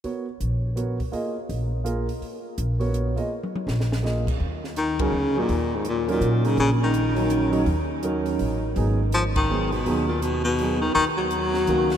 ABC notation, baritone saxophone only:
X:1
M:3/4
L:1/8
Q:"Swing" 1/4=165
K:Ebm
V:1 name="Baritone saxophone" clef=bass
z6 | z6 | z6 | z6 |
z2 E, D,2 B,,- | B,, A,, B,, B,,2 D, | D, E,4- E,- | E, z4 z |
z2 F, E,2 C,- | C, B,, C, C,2 E, | E, G,4- G, |]